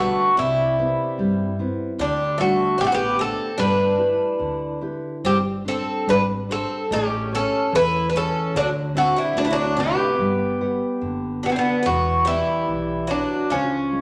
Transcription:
0.00 0.34 D3 medium
0.00 0.29 G3 soft
0.00 0.33 A3 medium
0.00 0.28 F#4 soft
0.00 0.35 F#4 medium
0.00 0.29 B4 medium
0.36 0.89 C2 medium
0.36 1.16 C3 medium
0.36 1.55 G3 medium
0.36 1.56 E4 medium
0.79 1.43 B3 medium
0.79 1.43 C4 soft
0.79 1.43 E4 medium
1.18 1.70 G2 medium
1.18 1.97 G3 medium
1.59 1.91 B3 medium
1.59 1.91 C4 soft
1.59 1.91 E4 medium
1.99 2.50 D2 medium
1.99 2.76 D3 medium
1.99 2.36 G3 medium
1.99 2.40 D4 medium
2.38 3.03 G3 medium
2.38 2.75 A3 medium
2.38 2.78 A3 medium
2.38 3.02 D4 soft
2.38 2.80 F#4 medium
2.78 3.31 A1 medium
2.78 3.16 A3 medium
2.78 2.81 D4 medium
2.78 2.83 G4 loud
2.84 2.91 A3 medium
2.84 2.93 F#4 medium
2.92 3.17 B3 medium
2.92 3.18 G4 medium
3.17 3.50 A3 medium
3.17 3.56 C4 medium
3.17 3.50 D4 soft
3.17 3.50 G4 medium
3.21 3.59 A4 medium
3.58 4.12 G1 medium
3.58 4.38 G3 medium
3.58 4.78 D4 medium
3.58 4.79 B4 medium
3.98 4.65 E4 soft
3.98 4.65 G4 soft
3.98 4.65 B4 medium
4.39 4.95 D2 medium
4.39 5.21 D3 medium
4.81 5.15 E4 soft
4.81 5.16 G4 soft
4.81 5.16 B4 soft
5.24 5.79 G1 medium
5.24 6.06 G3 medium
5.24 5.36 C4 medium
5.24 5.37 G4 medium
5.65 6.33 C4 medium
5.65 6.06 C4 medium
5.65 6.32 D4 soft
5.65 6.33 G4 soft
5.65 6.06 A4 medium
6.07 6.62 G#1 medium
6.07 6.88 G3 medium
6.07 6.20 D4 medium
6.07 6.21 B4 loud
6.49 6.89 C4 medium
6.49 6.83 D4 soft
6.49 6.83 G4 soft
6.49 6.93 A4 medium
6.49 6.83 C5 medium
6.91 7.45 A1 medium
6.91 7.71 A3 medium
6.91 7.30 C#4 medium
6.91 7.31 G4 medium
7.31 7.72 C#4 medium
7.31 7.98 G4 medium
7.31 7.98 A4 soft
7.31 7.75 A4 medium
7.31 7.98 C#5 medium
7.72 8.27 E2 medium
7.72 8.52 E3 medium
7.72 8.06 E4 medium
7.72 8.08 B4 loud
8.10 8.15 D4 medium
8.10 8.16 B4 medium
8.14 8.53 C#4 medium
8.14 8.47 G4 soft
8.14 8.47 A4 soft
8.14 8.57 A4 medium
8.14 8.47 C#5 medium
8.54 9.08 D2 loud
8.54 9.33 D3 medium
8.54 8.67 F#3 medium
8.54 8.68 D4 loud
8.94 9.15 A3 medium
8.94 9.60 C4 medium
8.94 9.60 D4 soft
8.94 9.61 F#4 medium
8.94 9.18 F#4 medium
9.16 9.35 G3 medium
9.16 9.38 E4 medium
9.35 9.90 D2 medium
9.35 9.43 F#3 medium
9.35 10.16 A3 medium
9.35 9.44 D4 medium
9.44 9.50 G3 medium
9.44 9.51 E4 medium
9.50 9.76 F#3 medium
9.50 9.79 D4 medium
9.76 10.10 C3 medium
9.76 11.39 B3 medium
9.76 10.10 D4 soft
9.76 11.41 G4 medium
9.76 10.10 F#5 medium
10.19 10.73 G1 medium
10.19 11.00 G3 medium
10.61 11.28 G4 soft
10.61 11.28 B4 medium
10.61 11.27 F#5 medium
11.01 11.56 F#1 medium
11.01 11.82 D3 medium
11.43 11.49 D3 medium
11.43 11.51 B3 medium
11.43 11.77 F#4 soft
11.43 11.78 G4 soft
11.43 11.78 B4 soft
11.49 11.55 E3 soft
11.49 11.58 C4 medium
11.56 11.82 D3 medium
11.56 11.84 B3 medium
11.83 12.40 E1 medium
11.83 12.67 E3 medium
11.83 12.22 B3 medium
11.83 12.27 F#4 medium
12.25 13.05 G3 medium
12.25 12.67 B3 medium
12.25 13.10 E4 medium
12.68 13.22 B1 medium
12.68 13.08 E3 medium
13.07 13.47 F#3 medium
13.07 13.50 B3 soft
13.07 13.53 D4 medium
13.50 14.01 C#2 medium
13.50 14.01 C#3 medium
13.50 14.01 F3 medium
13.50 14.01 C#4 medium
13.92 14.01 G#3 soft

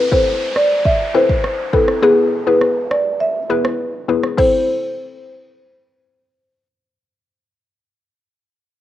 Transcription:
0.00 downlifter medium
0.11 0.32 C4 medium
0.11 0.32 E4 medium
0.11 0.32 A4 medium
0.11 0.32 B4 medium
0.11 0.22 C5 medium
0.11 kick medium
0.56 0.66 D5 medium
0.56 cross-stick medium
0.85 0.95 E5 medium
0.85 kick medium
1.14 1.35 C4 medium
1.14 1.35 E4 medium
1.14 1.35 A4 medium
1.14 1.35 B4 medium
1.14 1.24 C5 medium
1.29 kick medium
1.44 cross-stick medium
1.73 2.00 C4 medium
1.73 2.00 E4 medium
1.73 1.83 A4 medium
1.73 2.01 A4 medium
1.73 2.01 B4 medium
1.73 kick loud
1.88 cross-stick medium
2.03 2.43 B3 medium
2.03 2.43 E4 medium
2.03 2.23 G#4 loud
2.03 2.44 G#4 medium
2.03 2.44 B4 loud
2.47 2.67 B3 medium
2.47 2.67 E4 medium
2.47 2.67 G#4 medium
2.47 2.57 B4 medium
2.47 2.67 B4 medium
2.61 cross-stick medium
2.91 3.01 D5 medium
2.91 cross-stick medium
3.21 3.30 E5 medium
3.50 3.70 B3 medium
3.50 3.70 E4 medium
3.50 3.70 G#4 medium
3.50 3.60 B4 medium
3.50 3.70 B4 medium
3.65 cross-stick loud
4.08 4.36 B3 medium
4.08 4.36 E4 medium
4.08 4.36 G#4 medium
4.08 4.36 B4 medium
4.23 cross-stick medium
4.37 8.19 C4 medium
4.37 8.19 E4 medium
4.37 8.19 A4 medium
4.37 6.11 C5 medium
4.37 8.20 C5 medium
4.37 kick medium
4.37 crash medium

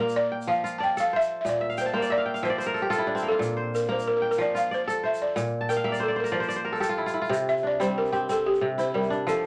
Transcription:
0.00 0.53 A#2 medium
0.00 1.03 A#3 medium
0.00 0.20 F4 medium
0.00 0.17 A#4 medium
0.00 0.85 C5 medium
0.09 shaker soft
0.16 0.50 D5 medium
0.32 1.25 G5 medium
0.41 shaker soft
0.47 1.51 F3 medium
0.47 0.78 F5 loud
0.64 1.67 F4 medium
0.64 shaker medium
0.78 1.91 D5 medium
0.78 0.82 A5 medium
0.78 shaker soft
0.83 0.90 G5 medium
0.97 1.51 A4 medium
0.97 1.15 F5 medium
0.97 shaker medium
1.13 1.94 C5 medium
1.13 1.40 E5 loud
1.21 shaker soft
1.41 2.49 A#2 medium
1.41 1.47 E5 medium
1.46 1.81 D5 medium
1.46 shaker medium
1.61 2.10 E5 medium
1.70 2.16 F5 medium
1.70 shaker soft
1.78 1.97 C5 medium
1.78 2.25 G5 medium
1.78 shaker medium
1.86 2.72 A5 medium
1.94 2.80 A#3 medium
1.94 2.03 A#4 medium
1.94 2.58 C5 medium
2.02 2.49 D5 medium
2.02 shaker soft
2.10 2.45 D5 medium
2.10 2.40 E5 medium
2.18 2.34 F5 medium
2.26 3.19 G5 medium
2.34 3.04 F5 medium
2.34 shaker soft
2.43 3.47 F3 medium
2.43 3.28 C5 loud
2.43 2.96 E5 medium
2.50 3.61 D5 medium
2.58 3.56 C5 medium
2.58 shaker medium
2.66 2.96 A#4 medium
2.74 2.90 A4 medium
2.74 shaker soft
2.82 4.23 G4 medium
2.90 3.31 F4 medium
2.90 3.29 A4 medium
2.90 shaker medium
2.98 3.38 E4 medium
3.07 4.75 D4 medium
3.15 4.95 C4 medium
3.15 shaker soft
3.23 3.88 A#3 medium
3.28 4.54 F4 medium
3.28 3.77 A4 medium
3.39 4.44 A#2 medium
3.39 shaker medium
3.57 4.75 C5 medium
3.75 3.82 A#4 medium
3.75 shaker medium
3.89 4.94 A#3 medium
3.89 4.08 C5 medium
3.99 shaker soft
4.08 4.15 A#4 medium
4.17 4.28 A#4 medium
4.22 5.15 G5 medium
4.31 4.41 A#4 medium
4.31 shaker soft
4.38 5.42 F3 medium
4.38 4.56 D5 medium
4.55 5.90 F4 medium
4.55 4.73 F5 medium
4.55 shaker medium
4.71 5.03 C5 medium
4.71 5.82 D5 medium
4.71 shaker soft
4.88 5.42 A4 medium
4.88 shaker medium
5.03 5.99 C5 medium
5.03 5.22 E5 medium
5.14 shaker soft
5.22 5.71 D5 medium
5.36 6.39 A#2 medium
5.36 shaker medium
5.46 shaker soft
5.61 5.90 A5 medium
5.69 6.03 A#4 medium
5.69 6.62 G5 medium
5.69 shaker medium
5.77 6.76 F5 medium
5.84 6.79 A#3 medium
5.84 6.38 E5 medium
5.92 6.08 D5 medium
5.92 shaker soft
6.00 6.10 A4 medium
6.00 6.16 C5 medium
6.08 6.31 D5 medium
6.16 6.34 A#4 medium
6.16 6.40 C5 medium
6.24 6.64 A#4 medium
6.24 shaker soft
6.32 7.37 F3 medium
6.32 7.12 C5 medium
6.32 6.48 D5 medium
6.40 6.56 C5 medium
6.40 shaker soft
6.48 7.59 D5 medium
6.48 shaker medium
6.56 7.75 C5 medium
6.65 6.87 A#4 medium
6.73 6.80 A4 medium
6.73 shaker soft
6.80 8.12 G4 medium
6.80 8.13 A4 medium
6.80 shaker medium
6.89 7.06 F4 medium
6.98 7.13 E4 medium
7.06 7.21 F4 medium
7.06 shaker medium
7.14 8.70 E4 medium
7.22 8.73 F4 medium
7.22 shaker soft
7.30 8.60 C3 medium
7.30 shaker medium
7.49 7.56 E5 loud
7.49 shaker soft
7.57 shaker soft
7.63 9.10 D4 medium
7.63 7.74 D5 loud
7.80 8.93 G3 medium
7.80 8.12 C4 medium
7.80 7.98 C5 medium
7.80 shaker medium
7.98 8.28 A#4 loud
8.06 shaker soft
8.12 8.29 C4 medium
8.12 9.46 G4 medium
8.12 shaker soft
8.29 9.46 C4 medium
8.29 8.47 A4 medium
8.29 shaker medium
8.46 8.76 G4 medium
8.54 shaker soft
8.61 9.32 C3 medium
8.78 9.33 E4 medium
8.78 8.86 C5 medium
8.78 shaker medium
8.94 9.32 G3 medium
8.94 9.28 A#4 medium
9.03 shaker soft
9.10 9.46 D4 medium
9.10 shaker soft
9.27 9.46 F3 medium
9.27 9.44 A4 medium
9.27 shaker medium

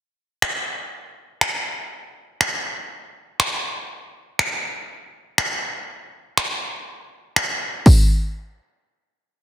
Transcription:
0.42 finger snap loud
1.41 finger snap loud
2.41 finger snap loud
3.40 finger snap loud
4.39 finger snap medium
5.38 finger snap loud
6.37 finger snap loud
7.36 finger snap loud
7.86 kick loud
7.86 open hi-hat medium

